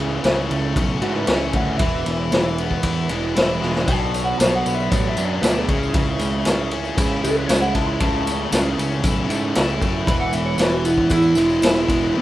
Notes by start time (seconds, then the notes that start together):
Already playing: C#2 C#3 E3 A3 C#4 E4
0.24 C#2 C#3, snare, ride
0.51 C#2 A3, ride
0.76 B1 C#4, kick, ride
1.02 G#2 C#3 E3 A3 C#4 E4 F#4, ride
1.16 B4
1.27 C#2 C#3 A3 C#4 C#5, snare, ride
1.31 C#4 E4
1.40 E5
1.53 D2 E3 F#5, kick, ride
1.78 E1 E3 E5, kick, ride
1.82 G#3 B3 E4
2.06 E1, ride
2.32 E1 E3, snare, ride
2.58 B3, ride
2.71 kick
2.83 E2 E4, kick, ride
3.09 E1 E3 G#3 B3 E4, ride
3.35 E1 E3 G#3 B3 E4, snare, ride
3.61 E1 G#3, snare
3.76 snare
3.88 B1 B2 F#3 B3 A5, kick, ride
3.92 D4
4.14 ride, tambourine
4.24 F#5
4.38 B1 B2 A5, snare, ride, tambourine
4.55 F#5
4.66 B1 B3, ride, tambourine
4.75 E5
4.80 tambourine
4.91 A1 D4 C#5, kick, ride, tambourine
5.09 E5
5.16 F#2 F#3 B3 D4, ride, tambourine
5.20 B2
5.25 C#5
5.41 D2 B2 F#3 B3 D4 B4, snare, ride, tambourine
5.47 D4
5.59 G#4
5.68 C#2 C#3 G#3 C#4, kick, ride
5.73 E4
5.83 tambourine
5.94 C#2 C#3, kick, ride
6.19 C#2, ride, tambourine
6.45 C#2 C#3, snare, ride, tambourine
6.71 C#4, ride
6.85 tambourine
6.97 C#3 G#3 C#4 E4, kick, ride, tambourine
7.01 E4
7.23 C#2 C#3 G#3 C#4 E4 A4, ride, tambourine
7.36 B4
7.47 C#2 E4 C#5, snare, ride, tambourine
7.61 F#5
7.75 C#2 G#3 A5, kick, ride, tambourine
7.87 B5
8.00 C#2 C#3 A3 C#4 E4 A5, kick, ride
8.27 ride, tambourine
8.52 C#2 C#3, snare, ride, tambourine
8.78 C#2 C#4, ride, tambourine
8.92 tambourine
9.03 B1 E4, kick, ride, tambourine
9.29 G#2 C#3 A3 C#4 E4, ride, tambourine
9.55 C#2 C#3 A3 C#4 E4, snare, ride, tambourine
9.69 tambourine
9.81 F#2 A3, kick, ride, tambourine
10.06 E1 E3 G#3 B3 E4 B5, kick, ride
10.20 F#5
10.33 E1 E5, ride, tambourine
10.46 C#5
10.58 E1 E3 B4, snare, ride, tambourine
10.71 F#4, tambourine
10.85 B3 E4, ride, tambourine
10.98 kick
11.10 E2 E4, kick, ride, tambourine
11.22 tambourine
11.35 E1 E3 G#3 B3 E4, ride, tambourine
11.49 tambourine
11.62 E1 E3 G#3 B3 E4, snare, ride, tambourine
11.75 tambourine
11.88 E1 G#3, kick, ride
12.13 A2 E3 A3 C#4 E4
12.17 C#4